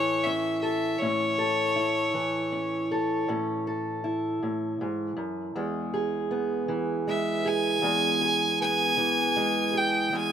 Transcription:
0.00 0.96 A2 medium
0.00 2.13 E3 medium
0.00 0.25 C#4 medium
0.00 1.76 E4 medium
0.00 0.61 A4 medium
0.00 0.25 C#5 loud
0.24 0.97 C#4 medium
0.24 0.60 E5 medium
0.61 0.96 A4 soft
0.61 1.00 E5 medium
0.98 3.27 A2 medium
0.98 2.51 C#4 medium
0.98 3.28 C#5 medium
1.38 2.90 A4 medium
1.76 4.04 E4 medium
2.14 6.67 E3 medium
2.52 3.28 C#4 soft
2.91 3.66 A4 medium
3.28 4.41 A2 medium
3.28 5.52 C#4 medium
3.67 5.52 A4 medium
4.04 6.30 E4 medium
4.43 4.81 A2 medium
4.81 5.16 G#2 medium
5.17 5.55 F#2 medium
5.55 7.82 E2 medium
5.55 7.07 G#3 medium
5.94 7.45 G#4 medium
6.31 8.60 B3 medium
6.68 8.96 E3 medium
7.07 7.82 G#3 soft
7.07 7.49 E5 medium
7.45 8.20 G#4 medium
7.45 8.61 G#5 loud
7.82 10.11 E2 medium
7.82 9.35 G#3 medium
8.22 9.72 G#4 medium
8.61 10.32 B3 medium
8.61 9.79 G#5 loud
8.97 10.32 E3 medium
9.36 10.12 G#3 medium
9.74 10.08 G#4 medium
9.74 10.17 G5 loud
10.12 10.32 E2 medium
10.12 10.32 G#3 medium
10.12 10.32 G#5 loud

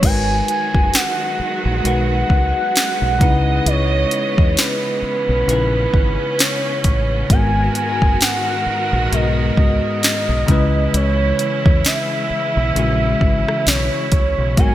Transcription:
0.01 0.41 G#1 loud
0.01 3.18 D#3 medium
0.01 3.18 F#3 medium
0.01 1.75 G#3 medium
0.01 7.26 G#3 medium
0.01 14.53 B3 medium
0.01 1.76 D#4 medium
0.01 3.18 F#4 medium
0.01 1.76 F#4 medium
0.01 1.77 A#4 medium
0.01 0.49 G#5 loud
0.01 kick loud
0.01 closed hi-hat medium
0.01 crash medium
0.06 1.77 B4 medium
0.48 0.96 G#5 loud
0.48 closed hi-hat medium
0.75 0.90 F#1 medium
0.75 kick loud
0.94 1.85 F#5 loud
0.94 snare loud
0.94 closed hi-hat medium
1.39 muted fingered electric bass stroke medium
1.65 1.81 A#1 medium
1.83 2.22 B1 medium
1.83 3.20 G#3 medium
1.83 3.20 D#4 medium
1.83 3.21 F#4 medium
1.83 3.22 A#4 medium
1.83 3.69 F#5 loud
1.83 closed hi-hat medium
1.88 3.22 B4 medium
2.30 2.52 C#2 medium
2.30 kick medium
2.76 snare loud
2.76 closed hi-hat medium
3.02 3.21 B1 medium
3.19 3.59 C#2 loud
3.19 4.93 C#3 loud
3.19 7.26 C#3 medium
3.19 7.26 E3 medium
3.19 4.94 C#4 medium
3.19 4.94 D#4 medium
3.19 4.95 E4 medium
3.19 5.01 D#5 medium
3.19 kick loud
3.19 closed hi-hat medium
3.23 4.95 B4 loud
3.66 4.04 C#2 loud
3.66 4.60 C#5 loud
3.66 closed hi-hat medium
4.11 closed hi-hat medium
4.38 4.54 E2 medium
4.38 kick loud
4.57 6.41 B4 loud
4.57 snare loud
4.57 closed hi-hat medium
5.02 7.28 C#4 medium
5.02 muted fingered electric bass stroke soft
5.29 5.45 B1 medium
5.46 5.86 A#1 medium
5.46 7.20 C#3 medium
5.46 7.21 C#4 medium
5.46 7.21 D#4 medium
5.46 7.22 E4 medium
5.46 closed hi-hat medium
5.51 7.23 B4 medium
5.94 6.16 G#1 medium
5.94 kick medium
6.39 7.30 C#5 loud
6.39 snare loud
6.39 closed hi-hat medium
6.84 7.22 A1 medium
6.84 kick medium
6.84 closed hi-hat medium
7.28 7.68 G#1 loud
7.28 9.02 G#2 medium
7.28 10.45 D#3 medium
7.28 9.03 G#3 medium
7.28 14.75 G#3 medium
7.28 9.03 B3 medium
7.28 10.45 F#4 medium
7.28 9.04 F#4 medium
7.28 10.45 A#4 medium
7.28 7.73 G#5 loud
7.28 kick loud
7.28 closed hi-hat medium
7.33 9.05 A#4 medium
7.75 8.24 G#5 loud
7.75 closed hi-hat medium
8.02 8.18 F#1 medium
8.02 kick loud
8.21 9.15 F#5 loud
8.21 snare loud
8.21 closed hi-hat medium
8.66 muted fingered electric bass stroke soft
8.93 9.09 A#1 medium
9.10 9.50 B1 loud
9.10 10.47 G#2 medium
9.10 10.46 G#3 medium
9.10 10.49 B3 medium
9.10 10.49 F#4 medium
9.10 10.96 D#5 loud
9.10 closed hi-hat medium
9.15 10.50 A#4 medium
9.57 9.79 C#2 medium
9.57 kick medium
10.03 snare loud
10.03 closed hi-hat medium
10.29 10.45 B1 medium
10.47 10.86 C#2 loud
10.47 12.21 C#3 loud
10.47 14.54 E3 medium
10.47 12.21 G#3 medium
10.47 14.54 C#4 medium
10.47 12.22 C#4 medium
10.47 14.54 E4 medium
10.47 12.22 E4 medium
10.47 kick loud
10.47 closed hi-hat medium
10.51 12.23 B4 loud
10.94 11.32 C#2 loud
10.94 11.85 C#5 loud
10.94 closed hi-hat medium
11.39 closed hi-hat medium
11.66 11.82 E2 medium
11.66 kick loud
11.85 13.68 E5 loud
11.85 snare loud
11.85 closed hi-hat medium
12.30 muted fingered electric bass stroke soft
12.57 12.73 B1 medium
12.74 13.13 A#1 medium
12.74 14.48 C#3 medium
12.74 14.48 G#3 medium
12.74 14.49 C#4 medium
12.74 14.50 E4 medium
12.74 closed hi-hat medium
12.79 14.50 F#4 medium
13.21 13.43 G#1 medium
13.21 kick medium
13.48 cross-stick medium
13.67 13.89 B1 loud
13.67 14.59 C#5 loud
13.67 snare loud
13.67 closed hi-hat medium
14.12 14.34 C#2 medium
14.12 kick medium
14.12 closed hi-hat medium
14.38 14.54 B1 medium
14.56 14.75 G#1 loud
14.56 14.75 G#2 medium
14.56 14.75 F#3 medium
14.56 14.75 G#3 medium
14.56 14.75 B3 medium
14.56 14.75 F#4 medium
14.56 14.75 A#4 medium
14.56 14.75 G#5 loud
14.56 kick loud
14.56 closed hi-hat medium
14.60 14.75 A#4 medium

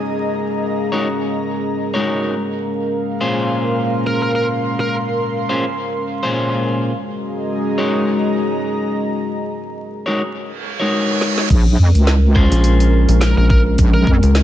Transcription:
0.00 0.90 G#3 medium
0.00 6.89 G#3 medium
0.00 6.89 C#4 medium
0.00 0.90 D#4 medium
0.00 0.90 F#4 medium
0.00 4.20 G#4 medium
0.00 0.90 A#4 medium
0.00 10.32 A#4 medium
0.00 0.90 C#5 medium
0.00 3.08 D#5 medium
0.00 4.20 A#5 medium
0.08 2.34 F5 medium
0.92 1.07 G#3 medium
0.92 1.07 D#4 medium
0.92 1.07 F#4 medium
0.92 1.07 A#4 medium
0.92 1.07 C#5 medium
1.94 2.34 G#3 medium
1.94 2.34 D#4 medium
1.94 2.34 F#4 medium
1.94 2.34 A#4 medium
1.94 2.34 C#5 medium
2.36 7.67 A#4 medium
2.47 8.43 F5 medium
3.21 5.47 A#2 medium
3.21 5.47 C#4 medium
3.21 5.47 F4 medium
3.21 5.47 G#4 medium
3.21 5.47 C5 medium
3.45 8.36 C6 medium
4.07 4.20 A#4 medium
4.22 4.31 A#4 medium
4.35 4.46 A#4 medium
4.80 4.95 A#4 medium
5.49 5.64 A#2 medium
5.49 5.64 C#4 medium
5.49 5.64 F4 medium
5.49 5.65 G#4 medium
5.49 5.64 C5 medium
6.23 6.91 A#2 medium
6.23 6.91 C#4 medium
6.23 6.91 F4 medium
6.23 6.91 G#4 medium
6.23 6.91 C5 loud
6.93 10.33 G#3 medium
6.93 10.32 C#4 medium
6.93 10.32 F#4 medium
6.93 10.36 G#4 medium
7.05 10.35 D#5 medium
7.13 10.36 A#5 medium
7.78 10.04 G#3 medium
7.78 10.04 D#4 medium
7.78 10.04 F#4 medium
7.78 10.04 A#4 medium
7.78 10.04 C#5 medium
10.06 10.21 G#3 medium
10.06 10.21 D#4 medium
10.06 10.21 F#4 medium
10.06 10.21 A#4 medium
10.06 10.21 C#5 medium
10.35 reverse cymbal medium
10.80 11.48 G#3 medium
10.80 11.48 D#4 medium
10.80 11.48 F#4 medium
10.80 11.48 A#4 medium
10.80 11.48 C#5 medium
11.21 snare medium
11.38 snare medium
11.50 11.77 A#1 loud
11.50 14.43 G#3 medium
11.50 14.43 C#4 medium
11.50 14.43 A#4 loud
11.50 kick loud
11.50 closed hi-hat medium
11.50 crash loud
11.79 11.92 F2 loud
11.95 12.49 C#2 loud
11.95 closed hi-hat soft
12.07 snare loud
12.35 14.43 C#4 medium
12.35 14.43 F4 medium
12.35 14.43 G#4 medium
12.35 14.43 C5 loud
12.35 kick medium
12.35 cross-stick medium
12.52 13.06 A#1 medium
12.52 closed hi-hat medium
12.64 closed hi-hat medium
12.80 closed hi-hat soft
13.08 13.35 A#1 medium
13.08 closed hi-hat medium
13.21 13.34 A#4 medium
13.21 snare loud
13.21 closed hi-hat medium
13.37 13.76 A#1 medium
13.37 13.45 A#4 medium
13.50 13.60 A#4 medium
13.50 kick loud
13.78 14.05 A#1 loud
13.78 kick loud
13.78 closed hi-hat medium
13.94 14.09 A#4 medium
14.07 14.21 F2 loud
14.07 kick medium
14.23 14.43 C#2 loud
14.23 closed hi-hat soft
14.35 snare loud
14.35 closed hi-hat medium

